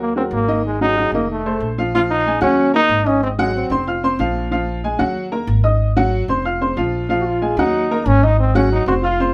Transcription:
0.00 0.28 D#2 medium
0.00 0.15 A#3 medium
0.16 0.42 F#3 medium
0.16 0.24 C4 loud
0.16 0.43 F#4 medium
0.16 0.43 A#4 medium
0.31 1.07 G#1 loud
0.31 0.63 A#3 loud
0.48 0.74 D#3 medium
0.48 0.75 D#4 medium
0.48 0.75 D#5 medium
0.66 0.80 G#3 medium
0.81 0.94 F#3 medium
0.81 1.11 D#4 loud
0.81 0.94 F#4 medium
0.81 0.94 G#4 medium
0.97 1.10 F#3 medium
0.97 1.10 F#4 medium
0.97 1.10 G#4 medium
1.12 1.57 F1 medium
1.12 1.40 D#3 medium
1.12 1.29 A#3 medium
1.12 1.40 D#4 medium
1.12 1.40 D#5 medium
1.32 1.75 A3 medium
1.46 1.72 A3 medium
1.46 1.72 A4 medium
1.46 1.72 C5 medium
1.60 2.36 A#1 medium
1.78 1.91 F3 medium
1.78 1.91 F4 medium
1.78 1.91 F5 medium
1.95 2.21 F3 medium
1.95 2.02 F4 loud
1.95 2.21 F4 medium
1.95 2.21 F5 medium
2.11 2.40 D#4 loud
2.26 2.39 G#3 medium
2.26 2.40 G#4 medium
2.26 2.40 G#5 medium
2.41 2.86 D#2 loud
2.41 2.68 F#3 medium
2.41 2.72 C#4 loud
2.41 2.68 F#4 loud
2.41 2.68 F#5 medium
2.73 3.00 A#3 medium
2.73 3.09 D#4 loud
2.73 3.00 A#4 medium
2.73 3.00 A#5 medium
2.89 3.65 G#1 loud
3.06 3.23 C#4 loud
3.06 3.32 D#4 medium
3.06 3.33 D#5 medium
3.06 3.33 D#6 medium
3.23 3.30 C4 loud
3.39 3.65 F#3 loud
3.39 3.54 G#3 medium
3.39 3.65 F#4 medium
3.39 3.65 F#5 loud
3.56 4.00 C4 medium
3.70 4.15 F1 medium
3.70 3.84 C4 medium
3.70 3.84 C5 medium
3.70 3.85 C6 medium
3.87 4.00 F4 medium
3.87 4.00 F5 medium
3.87 4.01 F6 medium
4.03 4.16 C4 medium
4.03 4.17 C5 medium
4.03 4.17 C6 medium
4.19 4.94 A#1 medium
4.19 4.46 F3 medium
4.19 4.46 F4 medium
4.19 4.46 F5 medium
4.51 4.78 F3 medium
4.51 4.78 F4 medium
4.51 4.78 F5 medium
4.84 4.97 G#3 medium
4.84 4.97 G#4 medium
4.84 4.97 G#5 medium
4.99 5.45 D#2 medium
4.99 5.26 F#3 loud
4.99 5.26 F#4 medium
4.99 5.26 F#5 medium
5.32 5.58 A#3 medium
5.32 5.58 A#4 medium
5.32 5.58 A#5 medium
5.47 6.23 G#1 loud
5.63 5.90 D#4 medium
5.63 5.90 D#5 medium
5.63 5.90 D#6 medium
5.96 6.23 F#3 loud
5.96 6.23 F#4 medium
5.96 6.23 F#5 loud
6.28 6.73 F1 medium
6.28 6.42 C4 medium
6.28 6.42 C5 medium
6.28 6.43 C6 medium
6.45 6.58 F4 medium
6.45 6.58 F5 medium
6.45 6.58 F6 medium
6.61 6.74 C4 medium
6.61 6.75 C5 medium
6.61 6.75 C6 medium
6.77 7.52 A#1 medium
6.77 7.03 F3 medium
6.77 7.04 F4 medium
6.77 7.04 F5 medium
7.09 7.36 F3 medium
7.09 7.36 F4 medium
7.09 7.36 F5 medium
7.20 7.28 F#4 medium
7.27 7.58 F4 loud
7.42 7.55 G#3 medium
7.42 7.55 G#4 medium
7.42 7.55 G#5 medium
7.57 8.02 D#2 loud
7.57 7.85 F#3 medium
7.57 8.09 D#4 medium
7.57 7.85 F#4 medium
7.57 7.85 F#5 medium
7.91 8.17 A#3 medium
7.91 8.17 A#4 medium
7.91 8.17 A#5 medium
8.06 8.81 G#1 loud
8.06 8.26 C#4 loud
8.22 8.49 D#4 medium
8.22 8.39 D#4 loud
8.22 8.49 D#5 medium
8.22 8.49 D#6 medium
8.40 8.54 C4 medium
8.55 8.81 F#3 loud
8.55 8.71 C#4 medium
8.55 8.81 F#4 medium
8.55 8.82 F#5 loud
8.73 8.87 D#4 loud
8.86 9.32 F1 medium
8.86 9.00 C4 medium
8.86 8.95 F#4 medium
8.86 9.01 C5 medium
8.86 9.01 C6 medium
9.03 9.33 F4 loud
9.03 9.16 F4 medium
9.03 9.17 F5 medium
9.03 9.17 F6 medium
9.20 9.33 C4 medium
9.20 9.33 C5 medium
9.20 9.33 C6 medium

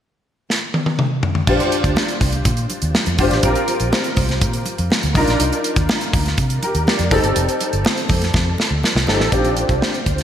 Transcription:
0.50 snare medium
0.74 high tom medium
0.86 high tom medium
0.99 mid tom medium
1.23 floor tom medium
1.35 floor tom medium
1.47 1.57 A#1 medium
1.47 2.37 D4 medium
1.47 2.37 F4 medium
1.47 2.38 G4 medium
1.47 2.38 C5 medium
1.47 kick loud
1.47 crash medium
1.47 muted conga soft
1.60 closed hi-hat soft
1.72 closed hi-hat medium
1.84 1.94 D2 medium
1.84 kick medium
1.84 closed hi-hat soft
1.96 snare loud
1.96 high conga medium
2.08 closed hi-hat soft
2.21 2.41 C2 medium
2.21 kick medium
2.21 open hi-hat medium
2.33 closed hi-hat soft
2.45 2.65 A#2 medium
2.45 kick medium
2.45 closed hi-hat medium
2.45 muted conga soft
2.45 low conga medium
2.57 closed hi-hat soft
2.70 closed hi-hat medium
2.70 muted conga soft
2.82 2.92 D#2 medium
2.82 closed hi-hat soft
2.95 snare loud
2.95 high conga medium
3.06 3.17 F2 medium
3.06 closed hi-hat soft
3.18 3.29 G1 medium
3.18 3.41 D4 medium
3.18 3.42 F4 medium
3.18 3.42 G4 medium
3.18 3.42 C5 medium
3.18 kick medium
3.18 open hi-hat medium
3.18 high conga medium
3.31 3.42 A1 medium
3.31 snare soft
3.31 closed hi-hat soft
3.43 3.54 A#1 loud
3.43 4.33 C4 medium
3.43 4.33 F4 medium
3.43 4.33 G4 medium
3.43 4.34 A#4 medium
3.43 kick loud
3.43 closed hi-hat loud
3.43 muted conga soft
3.55 closed hi-hat soft
3.68 closed hi-hat medium
3.68 muted conga soft
3.80 3.90 A#1 medium
3.80 closed hi-hat soft
3.93 snare loud
3.93 high conga medium
4.04 closed hi-hat soft
4.17 4.43 C2 medium
4.17 kick medium
4.17 open hi-hat medium
4.17 low conga medium
4.29 snare soft
4.29 closed hi-hat soft
4.41 4.62 A#2 loud
4.41 kick loud
4.41 closed hi-hat medium
4.41 muted conga soft
4.53 closed hi-hat soft
4.66 closed hi-hat medium
4.66 muted conga soft
4.78 4.89 F2 medium
4.78 closed hi-hat soft
4.90 snare loud
4.90 high conga medium
5.03 5.13 D2 medium
5.03 closed hi-hat soft
5.15 5.25 C2 medium
5.15 6.05 D4 medium
5.15 6.05 D#4 medium
5.15 6.06 F4 medium
5.15 6.06 A#4 medium
5.15 kick loud
5.15 open hi-hat medium
5.15 high conga medium
5.28 5.38 A#1 medium
5.28 snare soft
5.28 closed hi-hat soft
5.40 5.50 C2 loud
5.40 closed hi-hat loud
5.40 muted conga soft
5.53 closed hi-hat soft
5.64 closed hi-hat medium
5.76 5.87 D#2 medium
5.76 kick medium
5.76 closed hi-hat soft
5.89 snare loud
5.89 high conga medium
6.01 closed hi-hat soft
6.13 6.34 D2 medium
6.13 kick medium
6.13 open hi-hat medium
6.26 snare soft
6.26 closed hi-hat soft
6.38 6.58 C3 medium
6.38 kick medium
6.38 closed hi-hat medium
6.38 muted conga soft
6.38 low conga medium
6.50 closed hi-hat medium
6.63 6.87 G4 medium
6.63 6.86 A#4 medium
6.63 closed hi-hat medium
6.63 muted conga soft
6.75 6.85 D#2 medium
6.75 closed hi-hat soft
6.87 7.34 A#4 medium
6.87 7.34 D5 medium
6.87 snare loud
6.87 high conga medium
6.99 7.09 F2 medium
6.99 closed hi-hat soft
7.11 7.22 F1 medium
7.11 8.01 C4 medium
7.11 8.01 D#4 medium
7.11 8.02 G4 medium
7.11 8.02 A4 medium
7.11 kick loud
7.11 open hi-hat medium
7.11 high conga medium
7.24 7.34 G1 medium
7.24 closed hi-hat soft
7.36 7.46 F1 loud
7.36 closed hi-hat medium
7.36 muted conga soft
7.49 closed hi-hat medium
7.61 closed hi-hat medium
7.61 muted conga soft
7.73 7.83 G1 medium
7.73 closed hi-hat soft
7.85 snare loud
7.85 high conga medium
7.97 closed hi-hat soft
8.09 8.30 F2 medium
8.09 kick medium
8.09 open hi-hat medium
8.09 low conga medium
8.22 snare soft
8.22 closed hi-hat soft
8.34 8.54 F2 medium
8.34 kick medium
8.34 snare medium
8.34 muted conga soft
8.34 low conga medium
8.58 snare medium
8.58 muted conga soft
8.71 8.81 D2 medium
8.83 snare medium
8.83 high conga medium
8.95 9.06 C2 medium
8.95 snare medium
9.07 9.18 G1 medium
9.07 9.30 C4 medium
9.07 9.30 D#4 medium
9.07 9.31 G4 medium
9.07 9.31 A4 medium
9.07 snare medium
9.07 high conga medium
9.20 9.30 A1 medium
9.20 snare medium
9.31 9.62 A#1 medium
9.31 10.22 C4 medium
9.31 10.22 D4 medium
9.31 10.22 F4 medium
9.31 10.23 G4 medium
9.31 kick loud
9.31 closed hi-hat medium
9.45 closed hi-hat soft
9.57 closed hi-hat medium
9.69 9.79 C2 medium
9.69 kick medium
9.69 closed hi-hat soft
9.82 snare loud
9.94 closed hi-hat soft
10.06 10.23 D2 medium
10.06 kick medium
10.06 closed hi-hat medium
10.18 snare soft
10.18 closed hi-hat soft

